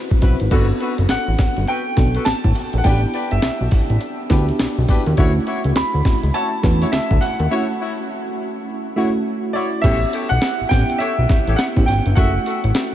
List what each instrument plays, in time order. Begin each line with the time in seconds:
Already playing: fm electric piano C4 E4 F#4 B4 C5
0.11 kick
0.22 analog synth bass B1, fm electric piano C4 E4 F#4 B4, horn section C4 E4 F#4 B4, kick, closed hi-hat
0.40 analog synth bass G#1, closed hi-hat
0.51 analog synth bass G1, fm electric piano B3 D4 F#4 A4, horn section F#4 A4 B4, kick, closed hi-hat, crash
0.80 horn section F#4 A4 B4, closed hi-hat
0.98 analog synth bass F#1, closed hi-hat
1.09 analog synth bass A1, grand piano F#5, snare, closed hi-hat
1.28 analog synth bass A1
1.38 kick, snare, open hi-hat
1.57 analog synth bass G1, closed hi-hat
1.67 horn section F#4 A4 B4, grand piano G5, closed hi-hat
1.97 analog synth bass B1, fm electric piano B3 D4 F#4 A4, kick, snare, closed hi-hat
2.15 horn section F#4 A4 B4, closed hi-hat
2.25 analog synth bass A1, grand piano A5, snare, closed hi-hat
2.44 analog synth bass A1, kick
2.55 open hi-hat
2.73 analog synth bass A#1, closed hi-hat
2.78 grand piano F#5
2.84 analog synth bass A1, fm electric piano B3 D4 E4 F#4, horn section D4 G4 B4, grand piano G5, kick, closed hi-hat
2.92 fm electric piano G4
3.14 horn section D4 G4 B4, closed hi-hat
3.31 analog synth bass G1, grand piano E5, closed hi-hat
3.42 analog synth bass B1, snare, closed hi-hat
3.61 analog synth bass B1
3.71 kick, open hi-hat
3.90 analog synth bass A1, closed hi-hat
4.01 closed hi-hat
4.30 analog synth bass D2, fm electric piano B3 D4 E4 F#4, horn section D4 G4 B4, kick, snare, closed hi-hat
4.38 fm electric piano G4
4.49 closed hi-hat
4.59 analog synth bass B1, snare, closed hi-hat
4.78 analog synth bass B1
4.88 horn section D4 G4 B4, kick, open hi-hat
5.06 analog synth bass D#2, closed hi-hat
5.17 analog synth bass D2, fm electric piano A3 C#4 E4 F#4, horn section E4 F#4 C#5, kick, closed hi-hat
5.47 horn section E4 F#4 C#5, closed hi-hat
5.64 analog synth bass C#2, closed hi-hat
5.75 analog synth bass D2, grand piano B5, snare, closed hi-hat
5.94 analog synth bass D2
6.05 kick, snare, open hi-hat
6.23 analog synth bass C#2, closed hi-hat
6.34 horn section E4 F#4 C#5, grand piano A5, closed hi-hat
6.63 analog synth bass E2, fm electric piano A3 C#4 E4 F#4, kick, snare, closed hi-hat
6.81 horn section E4 F#4 C#5, closed hi-hat
6.92 analog synth bass D2, grand piano E5, snare, closed hi-hat
7.11 analog synth bass D2, kick
7.21 grand piano F#5, open hi-hat
7.40 analog synth bass D#2, closed hi-hat
7.51 fm electric piano A3 C#4 E4 F#4, horn section E4 F#4 C#5
7.80 horn section E4 F#4 C#5
8.96 fm electric piano A3 C#4 E4 F#4, horn section E4 F#4 C#5
9.53 horn section E4 F#4 C#5, grand piano D5
9.82 analog synth bass A1, fm electric piano B3 C#4 E4 G4, horn section G4 A4 C#5, grand piano E5, kick, closed hi-hat, crash, tambourine
10.13 horn section G4 A4 C#5, closed hi-hat, tambourine
10.29 analog synth bass B1, grand piano F#5, closed hi-hat
10.42 snare, closed hi-hat, tambourine
10.61 analog synth bass A1
10.69 analog synth bass A1, fm electric piano B3 C#4 E4 G4, grand piano G5, kick, snare, open hi-hat, tambourine
10.90 closed hi-hat
10.98 horn section G4 A4 C#5, grand piano E5, closed hi-hat, tambourine
11.18 analog synth bass B1
11.29 kick, snare, closed hi-hat
11.47 analog synth bass A1, horn section G4 A4 C#5, closed hi-hat
11.56 grand piano F#5, snare, closed hi-hat, tambourine
11.76 analog synth bass A1, fm electric piano B3 C#4 E4 G4, kick
11.86 analog synth bass G#1, grand piano G5, open hi-hat, tambourine
12.06 analog synth bass G1, closed hi-hat
12.15 analog synth bass F#1, fm electric piano A3 C#4 E4 F#4, horn section F#4 A4 E5, grand piano F#5, kick, closed hi-hat, tambourine
12.46 horn section F#4 A4 E5, closed hi-hat, tambourine
12.64 analog synth bass A1, closed hi-hat
12.75 snare, closed hi-hat, tambourine